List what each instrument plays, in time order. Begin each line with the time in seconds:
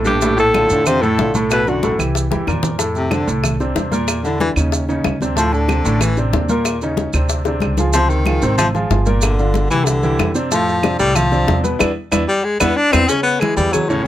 Already playing: upright bass A#1, grand piano A2 A3 A4
0.04 baritone saxophone G2, alto saxophone G4, high conga, maracas
0.21 grand piano A2 A3 A4, high bongo, high conga, maracas
0.36 baritone saxophone A2, alto saxophone A4, high bongo, high conga, maracas
0.54 grand piano D3 D4 F4, high bongo, high conga, claves, maracas
0.70 upright bass F2, grand piano D3 D4 F4, high conga, maracas
0.85 baritone saxophone C3, alto saxophone C5, high bongo, high conga, low conga, claves, maracas
1.01 baritone saxophone A2, grand piano A2 A3 A4, alto saxophone A4, high bongo, high conga, maracas
1.19 upright bass B1, grand piano D3 D4 F4, high bongo, low bongo, high conga, maracas
1.35 grand piano A2 A3 A4, high bongo, high conga, maracas
1.50 baritone saxophone B2, alto saxophone B4, high bongo, high conga, claves, maracas
1.67 baritone saxophone F#2, grand piano D3 D4 F#4, alto saxophone F#4, high bongo, high conga, maracas
1.83 grand piano A2 A3 A4, high bongo, high conga, maracas
1.99 upright bass C2, grand piano E3 E4 G4, high bongo, high conga, claves, maracas
2.15 high bongo, high conga, maracas
2.31 upright bass E2, grand piano E3 E4 G4, high bongo, high conga, maracas
2.47 upright bass F2, grand piano A#2 A#3 A#4, low bongo, claves, maracas
2.52 low conga
2.63 low bongo, low conga, maracas
2.78 grand piano A2 A3 A4, high bongo, high conga, maracas
2.95 baritone saxophone C3, high bongo, high conga, maracas
3.10 grand piano C3 C4 D4, baritone saxophone D3, high bongo, high conga, claves, maracas
3.27 upright bass C2, grand piano A2 A3 A4, high conga, maracas
3.44 high bongo, high conga, low conga, claves, maracas
3.60 grand piano C3 C4 D4, high bongo, high conga, maracas
3.75 upright bass E2, grand piano C3 C4 D4, high bongo, low bongo, high conga, maracas
3.91 grand piano A#2 A#3 A#4, high bongo, high conga, maracas
4.08 high bongo, high conga, claves, maracas
4.23 baritone saxophone D3, grand piano D3 D4 E4, high bongo, high conga, maracas
4.40 baritone saxophone E3, high bongo, high conga, maracas
4.56 upright bass D#2, grand piano C#3 C#4 D#4, high bongo, claves, maracas
4.72 high bongo, high conga, maracas
4.88 grand piano C#3 C#4 D#4, high bongo, high conga, maracas
5.04 upright bass D2, high bongo, low bongo, high conga, claves, maracas
5.20 grand piano C3 C4 D4, high conga, maracas
5.36 grand piano A2 A3 A4, baritone saxophone F3, high bongo, high conga, maracas
5.53 baritone saxophone D3, high bongo, high conga, maracas
5.68 grand piano C3 C4 D4, high bongo, high conga, claves, maracas
5.84 upright bass A1, grand piano A2 A3 A4, high conga, maracas
6.01 baritone saxophone E3, high bongo, high conga, low conga, claves, maracas
6.17 grand piano C3 C4 D4, high bongo, high conga, maracas
6.33 upright bass D#2, grand piano C3 C4 D4, high bongo, low bongo, high conga, maracas
6.49 grand piano A#2 A#3 A#4, high bongo, high conga, maracas
6.65 high bongo, high conga, claves, maracas
6.81 grand piano C#3 C#4 D#4, high bongo, high conga, maracas
6.97 high bongo, high conga, maracas
7.13 upright bass D2, grand piano C3 C4 D4, high bongo, high conga, claves, maracas
7.29 high bongo, high conga, maracas
7.44 grand piano C3 C4 D4, high bongo, high conga, maracas
7.60 upright bass C#2, high bongo, high conga, claves, maracas
7.77 grand piano F3 F4 G#4, low bongo, high conga, maracas
7.93 grand piano C3 C4 C5, baritone saxophone F3, high bongo, high conga, maracas
8.09 baritone saxophone D#3, high bongo, high conga, maracas
8.26 grand piano F3 F4 G#4, high bongo, high conga, claves, maracas
8.42 upright bass G#1, grand piano C3 C4 C5, high conga, maracas
8.58 baritone saxophone F3, high bongo, high conga, low conga, claves, maracas
8.74 grand piano F3 F4 G#4, high bongo, high conga, low conga, maracas
8.90 upright bass G1, grand piano F3 F4 G#4, high bongo, low bongo, high conga, maracas
9.06 grand piano A#2 A#3 A#4, high bongo, high conga, maracas
9.21 baritone saxophone D3, high bongo, high conga, claves, maracas
9.39 grand piano D3 D4 F4, high bongo, high conga, maracas
9.54 high bongo, high conga, maracas
9.70 upright bass C2, baritone saxophone E3, grand piano E3 E4 G4, high bongo, high conga, claves, maracas
9.85 baritone saxophone D3, high bongo, high conga, maracas
10.03 grand piano E3 E4 G4, high bongo, high conga, maracas
10.19 upright bass F2, high bongo, low bongo, high conga, claves, maracas
10.35 grand piano C3 C4 D4, maracas
10.51 grand piano A2 A3 A4, baritone saxophone F3, high bongo, high conga, maracas
10.68 high bongo, high conga, maracas
10.83 grand piano C3 C4 D4, high bongo, high conga, claves, maracas
10.99 upright bass C2, grand piano A2 A3 A4, baritone saxophone G3, high conga, maracas
11.15 baritone saxophone F3, high bongo, high conga, low conga, claves, maracas
11.32 grand piano C3 C4 D4, high bongo, high conga, low conga, maracas
11.47 upright bass E2, grand piano C3 C4 D4, high bongo, low bongo, high conga, maracas
11.63 grand piano B2 B3 B4, high bongo, high conga, maracas
11.79 upright bass E2, grand piano B3 D4 E4, high bongo, high conga, claves, maracas
12.12 upright bass E2, grand piano B3 D4 E4, high bongo, high conga, claves, maracas
12.28 baritone saxophone G3
12.44 baritone saxophone G#3
12.60 upright bass E2, grand piano B3 D4 E4, baritone saxophone B3, high bongo, high conga, claves, maracas
12.76 baritone saxophone D4
12.92 upright bass E2, grand piano B3 D4 E4, baritone saxophone C4, high bongo, high conga, claves, maracas
13.08 grand piano C#3 C#4 C#5, baritone saxophone C#4, cowbell, high conga, maracas
13.23 baritone saxophone B3, maracas
13.27 high conga
13.40 grand piano E3 E4 G#4, baritone saxophone G#3, cowbell, high conga, claves, maracas
13.56 upright bass E2, grand piano E3 E4 G#4, baritone saxophone G3, high conga, maracas
13.73 baritone saxophone F#3, cowbell, high conga, low conga, claves, maracas
13.89 baritone saxophone A2, grand piano C#3 C#4 C#5, high conga, maracas
14.04 baritone saxophone C#3